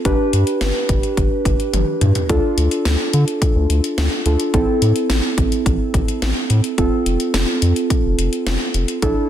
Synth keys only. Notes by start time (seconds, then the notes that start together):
0.05 D4 G4 B4
2.29 D4 F4 A4
4.26 D4 F4 A4
4.54 C4 E4 A4
6.78 C4 F4 A4
9.02 D4 E4 A4